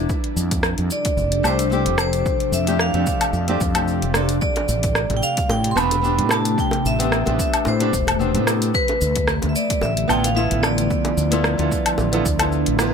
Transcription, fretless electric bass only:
0, 0, Header, 1, 2, 480
1, 0, Start_track
1, 0, Tempo, 540541
1, 82, Time_signature, 4, 2, 24, 8
1, 11490, End_track
2, 0, Start_track
2, 0, Title_t, "Fretless electric bass"
2, 0, Program_c, 0, 35
2, 324, Note_on_c, 0, 41, 99
2, 660, Note_off_c, 0, 41, 0
2, 698, Note_on_c, 0, 41, 98
2, 787, Note_off_c, 0, 41, 0
2, 1039, Note_on_c, 0, 29, 100
2, 1246, Note_off_c, 0, 29, 0
2, 1278, Note_on_c, 0, 36, 96
2, 1655, Note_on_c, 0, 29, 103
2, 1668, Note_off_c, 0, 36, 0
2, 1975, Note_off_c, 0, 29, 0
2, 2240, Note_on_c, 0, 41, 98
2, 2579, Note_off_c, 0, 41, 0
2, 2610, Note_on_c, 0, 41, 95
2, 2703, Note_off_c, 0, 41, 0
2, 2957, Note_on_c, 0, 41, 104
2, 3165, Note_off_c, 0, 41, 0
2, 3204, Note_on_c, 0, 41, 84
2, 3577, Note_on_c, 0, 29, 85
2, 3590, Note_off_c, 0, 41, 0
2, 3896, Note_off_c, 0, 29, 0
2, 4162, Note_on_c, 0, 33, 100
2, 4499, Note_off_c, 0, 33, 0
2, 4526, Note_on_c, 0, 33, 96
2, 4621, Note_off_c, 0, 33, 0
2, 4877, Note_on_c, 0, 45, 101
2, 5085, Note_off_c, 0, 45, 0
2, 5115, Note_on_c, 0, 28, 96
2, 5492, Note_on_c, 0, 45, 103
2, 5505, Note_off_c, 0, 28, 0
2, 5813, Note_off_c, 0, 45, 0
2, 6088, Note_on_c, 0, 33, 94
2, 6423, Note_off_c, 0, 33, 0
2, 6457, Note_on_c, 0, 33, 96
2, 6546, Note_off_c, 0, 33, 0
2, 6807, Note_on_c, 0, 45, 112
2, 7010, Note_off_c, 0, 45, 0
2, 7042, Note_on_c, 0, 28, 97
2, 7408, Note_on_c, 0, 45, 105
2, 7421, Note_off_c, 0, 28, 0
2, 7731, Note_off_c, 0, 45, 0
2, 8007, Note_on_c, 0, 38, 99
2, 8342, Note_off_c, 0, 38, 0
2, 8380, Note_on_c, 0, 38, 100
2, 8468, Note_off_c, 0, 38, 0
2, 8724, Note_on_c, 0, 33, 108
2, 8928, Note_off_c, 0, 33, 0
2, 8966, Note_on_c, 0, 33, 97
2, 9302, Note_off_c, 0, 33, 0
2, 9336, Note_on_c, 0, 33, 105
2, 9655, Note_off_c, 0, 33, 0
2, 9923, Note_on_c, 0, 38, 96
2, 10260, Note_off_c, 0, 38, 0
2, 10294, Note_on_c, 0, 38, 94
2, 10385, Note_off_c, 0, 38, 0
2, 10641, Note_on_c, 0, 33, 92
2, 10847, Note_off_c, 0, 33, 0
2, 10881, Note_on_c, 0, 38, 84
2, 11219, Note_off_c, 0, 38, 0
2, 11258, Note_on_c, 0, 33, 90
2, 11490, Note_off_c, 0, 33, 0
2, 11490, End_track
0, 0, End_of_file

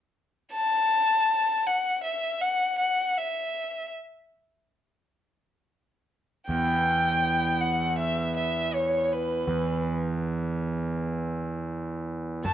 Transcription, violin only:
0, 0, Header, 1, 2, 480
1, 0, Start_track
1, 0, Tempo, 745342
1, 346, Time_signature, 4, 2, 24, 8
1, 8073, End_track
2, 0, Start_track
2, 0, Title_t, "Violin"
2, 0, Program_c, 0, 40
2, 344, Note_on_c, 0, 81, 77
2, 1074, Note_on_c, 0, 78, 60
2, 1083, Note_off_c, 0, 81, 0
2, 1307, Note_off_c, 0, 78, 0
2, 1311, Note_on_c, 0, 76, 56
2, 1553, Note_on_c, 0, 78, 58
2, 1563, Note_off_c, 0, 76, 0
2, 1789, Note_off_c, 0, 78, 0
2, 1797, Note_on_c, 0, 78, 55
2, 2046, Note_on_c, 0, 76, 52
2, 2056, Note_off_c, 0, 78, 0
2, 2515, Note_off_c, 0, 76, 0
2, 4185, Note_on_c, 0, 79, 66
2, 4901, Note_on_c, 0, 78, 52
2, 4910, Note_off_c, 0, 79, 0
2, 5138, Note_off_c, 0, 78, 0
2, 5141, Note_on_c, 0, 76, 55
2, 5365, Note_off_c, 0, 76, 0
2, 5388, Note_on_c, 0, 76, 55
2, 5628, Note_on_c, 0, 73, 51
2, 5638, Note_off_c, 0, 76, 0
2, 5878, Note_on_c, 0, 71, 44
2, 5887, Note_off_c, 0, 73, 0
2, 6350, Note_off_c, 0, 71, 0
2, 8023, Note_on_c, 0, 81, 72
2, 8073, Note_off_c, 0, 81, 0
2, 8073, End_track
0, 0, End_of_file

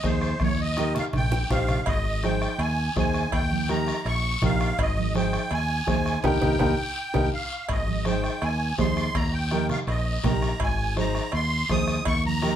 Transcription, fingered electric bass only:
0, 0, Header, 1, 2, 480
1, 0, Start_track
1, 0, Key_signature, -4, "major"
1, 0, Tempo, 364078
1, 542, Time_signature, 4, 2, 24, 8
1, 16555, End_track
2, 0, Start_track
2, 0, Title_t, "Fingered electric bass"
2, 0, Program_c, 0, 33
2, 49, Note_on_c, 0, 39, 94
2, 439, Note_off_c, 0, 39, 0
2, 531, Note_on_c, 0, 39, 84
2, 1304, Note_off_c, 0, 39, 0
2, 1502, Note_on_c, 0, 34, 89
2, 1887, Note_off_c, 0, 34, 0
2, 1981, Note_on_c, 0, 34, 86
2, 2366, Note_off_c, 0, 34, 0
2, 2461, Note_on_c, 0, 32, 92
2, 3230, Note_off_c, 0, 32, 0
2, 3407, Note_on_c, 0, 39, 89
2, 3798, Note_off_c, 0, 39, 0
2, 3902, Note_on_c, 0, 39, 93
2, 4286, Note_off_c, 0, 39, 0
2, 4382, Note_on_c, 0, 39, 86
2, 5150, Note_off_c, 0, 39, 0
2, 5343, Note_on_c, 0, 34, 91
2, 5727, Note_off_c, 0, 34, 0
2, 5831, Note_on_c, 0, 34, 89
2, 6212, Note_off_c, 0, 34, 0
2, 6308, Note_on_c, 0, 32, 93
2, 7074, Note_off_c, 0, 32, 0
2, 7262, Note_on_c, 0, 39, 94
2, 7647, Note_off_c, 0, 39, 0
2, 7743, Note_on_c, 0, 39, 87
2, 8127, Note_off_c, 0, 39, 0
2, 8221, Note_on_c, 0, 39, 88
2, 8401, Note_off_c, 0, 39, 0
2, 8463, Note_on_c, 0, 39, 94
2, 8641, Note_off_c, 0, 39, 0
2, 8701, Note_on_c, 0, 39, 96
2, 8880, Note_off_c, 0, 39, 0
2, 9418, Note_on_c, 0, 39, 87
2, 9599, Note_off_c, 0, 39, 0
2, 10140, Note_on_c, 0, 32, 91
2, 10909, Note_off_c, 0, 32, 0
2, 11101, Note_on_c, 0, 39, 96
2, 11486, Note_off_c, 0, 39, 0
2, 11577, Note_on_c, 0, 39, 87
2, 11963, Note_off_c, 0, 39, 0
2, 12059, Note_on_c, 0, 39, 92
2, 12829, Note_off_c, 0, 39, 0
2, 13015, Note_on_c, 0, 34, 94
2, 13402, Note_off_c, 0, 34, 0
2, 13499, Note_on_c, 0, 34, 85
2, 13885, Note_off_c, 0, 34, 0
2, 13981, Note_on_c, 0, 32, 95
2, 14750, Note_off_c, 0, 32, 0
2, 14937, Note_on_c, 0, 39, 92
2, 15323, Note_off_c, 0, 39, 0
2, 15416, Note_on_c, 0, 39, 92
2, 15803, Note_off_c, 0, 39, 0
2, 15897, Note_on_c, 0, 39, 90
2, 16555, Note_off_c, 0, 39, 0
2, 16555, End_track
0, 0, End_of_file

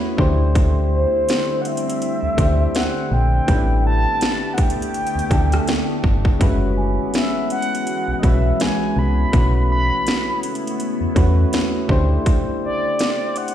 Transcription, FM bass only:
0, 0, Header, 1, 2, 480
1, 0, Start_track
1, 0, Tempo, 731707
1, 363, Time_signature, 4, 2, 24, 8
1, 8886, End_track
2, 0, Start_track
2, 0, Title_t, "FM bass"
2, 0, Program_c, 0, 39
2, 121, Note_on_c, 0, 38, 104
2, 695, Note_off_c, 0, 38, 0
2, 1462, Note_on_c, 0, 38, 51
2, 1502, Note_off_c, 0, 38, 0
2, 1561, Note_on_c, 0, 38, 94
2, 1753, Note_off_c, 0, 38, 0
2, 2043, Note_on_c, 0, 34, 94
2, 2234, Note_off_c, 0, 34, 0
2, 2284, Note_on_c, 0, 33, 105
2, 2666, Note_off_c, 0, 33, 0
2, 3382, Note_on_c, 0, 38, 51
2, 3422, Note_off_c, 0, 38, 0
2, 3482, Note_on_c, 0, 38, 93
2, 3673, Note_off_c, 0, 38, 0
2, 3960, Note_on_c, 0, 31, 94
2, 4152, Note_off_c, 0, 31, 0
2, 4203, Note_on_c, 0, 30, 105
2, 4585, Note_off_c, 0, 30, 0
2, 5301, Note_on_c, 0, 35, 47
2, 5342, Note_off_c, 0, 35, 0
2, 5401, Note_on_c, 0, 35, 91
2, 5593, Note_off_c, 0, 35, 0
2, 5882, Note_on_c, 0, 36, 92
2, 6073, Note_off_c, 0, 36, 0
2, 6123, Note_on_c, 0, 35, 101
2, 6505, Note_off_c, 0, 35, 0
2, 7222, Note_on_c, 0, 40, 47
2, 7262, Note_off_c, 0, 40, 0
2, 7321, Note_on_c, 0, 40, 87
2, 7512, Note_off_c, 0, 40, 0
2, 7800, Note_on_c, 0, 38, 101
2, 7992, Note_off_c, 0, 38, 0
2, 8886, End_track
0, 0, End_of_file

